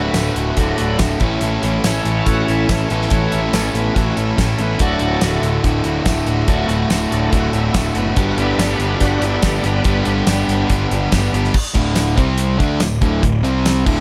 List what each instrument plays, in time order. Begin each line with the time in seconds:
Already playing: distorted electric guitar D2 A2 D3 A3 F#4, overdriven electric guitar D3 A3 F#4, tonewheel organ B4
0.13 picked electric bass D1, distorted electric guitar A2 D3, snare, closed hi-hat, tambourine
0.18 distorted electric guitar A3 F#4
0.35 picked electric bass D1, tonewheel organ F#4, closed hi-hat
0.56 picked electric bass D1, distorted electric guitar D2 A2 D3 A3, tonewheel organ F#3, kick, closed hi-hat
0.60 tonewheel organ D4, distorted electric guitar F#4
0.77 picked electric bass D1, distorted electric guitar D3 A3 F#4, closed hi-hat
0.99 picked electric bass D1, distorted electric guitar A2 D3 A3 F#4, kick, snare, closed hi-hat, tambourine
1.19 picked electric bass A1, distorted electric guitar A2 E3 A3 C#4 E4 A4, kick, closed hi-hat
1.24 overdriven electric guitar A4
1.41 picked electric bass A1, distorted electric guitar A2 E3 A3 C#4 E4 A4, closed hi-hat
1.63 picked electric bass A1, distorted electric guitar A3 C#4 E4 A4, closed hi-hat
1.83 picked electric bass A1, tonewheel organ E3 A3 C#4, distorted electric guitar A3 C#4 E4 A4, snare, closed hi-hat, tambourine
2.05 picked electric bass A1, closed hi-hat
2.25 picked electric bass A1, distorted electric guitar A2 E3 A3 C#4 E4, tonewheel organ F4 F#4, kick, closed hi-hat
2.29 distorted electric guitar A4
2.46 picked electric bass A1, distorted electric guitar A3 C#4 E4 A4, tonewheel organ E4, closed hi-hat
2.68 picked electric bass A1, tonewheel organ E3 A3 C#4, distorted electric guitar A3 C#4 E4, kick, snare, closed hi-hat, tambourine
2.72 distorted electric guitar A4
2.88 picked electric bass A1, overdriven electric guitar A2 E3, distorted electric guitar A3 C#4 E4 A4, tonewheel organ B3, closed hi-hat
2.93 overdriven electric guitar A4
3.02 snare
3.09 picked electric bass A1, distorted electric guitar A2 E3 A3 C#4 E4 A4, tonewheel organ E3 A3, kick, closed hi-hat
3.14 tonewheel organ C#4 F#4
3.32 picked electric bass A1, distorted electric guitar A3 C#4 E4 A4, tonewheel organ E4, closed hi-hat
3.53 picked electric bass A1, distorted electric guitar A3 C#4 E4 A4, tonewheel organ A3, snare, closed hi-hat, tambourine
3.74 picked electric bass A1, tonewheel organ B3, closed hi-hat
3.94 picked electric bass A1, distorted electric guitar A2 E3 A3 C#4 E4 A4, tonewheel organ F4 F#4, kick, closed hi-hat
4.16 picked electric bass A1, distorted electric guitar A3 C#4 E4 A4, tonewheel organ E4, closed hi-hat
4.36 picked electric bass A1, distorted electric guitar A3 C#4 E4 A4, tonewheel organ A3, kick, snare, closed hi-hat, tambourine
4.58 picked electric bass A1, distorted electric guitar A3 C#4 E4 A4, tonewheel organ B3, closed hi-hat
4.78 picked electric bass D1, distorted electric guitar D2 A2 D3 A3 F#4, tonewheel organ F#3 A3 D4, kick, closed hi-hat
4.99 picked electric bass D1, distorted electric guitar A3 F#4, closed hi-hat
5.04 distorted electric guitar D3
5.21 picked electric bass D1, distorted electric guitar A2 D3 A3 F#4, snare, closed hi-hat, tambourine
5.42 picked electric bass D1, closed hi-hat
5.64 picked electric bass D1, distorted electric guitar D2 A2 D3 A3 F#4, kick, closed hi-hat
5.84 picked electric bass D1, distorted electric guitar D3 A3 F#4, closed hi-hat
6.05 picked electric bass D1, distorted electric guitar A2 D3 A3 F#4, kick, snare, closed hi-hat, tambourine
6.26 picked electric bass D1, distorted electric guitar D3 A3 F#4, closed hi-hat
6.46 picked electric bass D1, distorted electric guitar D2 A2 D3 A3 F#4, tonewheel organ F#3 A3 D4, kick, closed hi-hat
6.68 picked electric bass D1, distorted electric guitar A3 F#4, closed hi-hat
6.72 distorted electric guitar D3
6.89 picked electric bass D1, distorted electric guitar A2 D3 A3 F#4, snare, closed hi-hat, tambourine
7.10 picked electric bass D1, tonewheel organ F#3 A3 D4, closed hi-hat
7.30 picked electric bass D1, distorted electric guitar D2 A2 D3, tonewheel organ F4 F#4, kick, closed hi-hat
7.34 distorted electric guitar A3 F#4
7.52 picked electric bass D1, distorted electric guitar D3 A3 F#4, tonewheel organ E4, closed hi-hat
7.73 picked electric bass D1, distorted electric guitar A2 D3 A3 F#4, kick, snare, closed hi-hat, tambourine
7.77 tonewheel organ A3
7.95 picked electric bass F#1, distorted electric guitar D3 A3 F#4, tonewheel organ B3, closed hi-hat
8.15 picked electric bass G1, distorted electric guitar G2 D3 G3 B3 D4 G4, tonewheel organ F#4, kick, closed hi-hat
8.37 picked electric bass G1, tonewheel organ G3 B3 D4 E4, distorted electric guitar G3 B3 D4 G4, closed hi-hat
8.58 picked electric bass G1, distorted electric guitar G3 B3 D4 G4, tonewheel organ A3, snare, closed hi-hat, tambourine
8.79 picked electric bass G1, tonewheel organ B3, closed hi-hat
8.96 distorted electric guitar G2, tonewheel organ F4
9.00 picked electric bass G1, distorted electric guitar D3 G3 B3 D4 G4, tonewheel organ F#4, kick, closed hi-hat
9.21 picked electric bass G1, distorted electric guitar B3 D4 G4, tonewheel organ E4, closed hi-hat
9.25 distorted electric guitar G3
9.42 picked electric bass G1, distorted electric guitar G3 B3 D4 G4, tonewheel organ A3, kick, snare, closed hi-hat, tambourine
9.64 picked electric bass G1, distorted electric guitar G3 B3 D4 G4, tonewheel organ B3, closed hi-hat
9.83 picked electric bass G1, distorted electric guitar G2 D3 G3 B3 D4 G4, tonewheel organ G3 B3 D4, kick, closed hi-hat
10.05 picked electric bass G1, distorted electric guitar G3 B3 D4 G4, closed hi-hat
10.26 picked electric bass G1, distorted electric guitar G3 B3 D4 G4, snare, closed hi-hat, tambourine
10.48 picked electric bass G1, closed hi-hat
10.68 picked electric bass G1, distorted electric guitar G2 D3 G3 B3 D4 G4, kick, closed hi-hat
10.89 picked electric bass G1, distorted electric guitar G3 B3 D4 G4, closed hi-hat
11.11 picked electric bass G1, distorted electric guitar G3 B3 D4 G4, kick, snare, closed hi-hat, tambourine
11.33 picked electric bass G1, distorted electric guitar G3 B3 D4 G4, closed hi-hat
11.44 snare
11.54 kick, crash
11.74 picked electric bass D1, distorted electric guitar D2 A2 D3, kick, closed hi-hat
11.96 snare, closed hi-hat, tambourine
12.16 picked electric bass C2, distorted electric guitar C3 G3 C4, kick, closed hi-hat
12.38 closed hi-hat
12.58 picked electric bass D2, distorted electric guitar D3 A3 D4, kick, closed hi-hat
12.80 picked electric bass D1, distorted electric guitar D2 A2, snare, closed hi-hat, tambourine
13.01 picked electric bass D1, distorted electric guitar D2 A2 D3, kick, closed hi-hat
13.23 picked electric bass D1, distorted electric guitar D2 A2, kick, closed hi-hat
13.42 picked electric bass C2, distorted electric guitar C3 G3 C4, closed hi-hat
13.66 snare, closed hi-hat, tambourine
13.85 picked electric bass D1, distorted electric guitar D2 A2 D3, kick, crash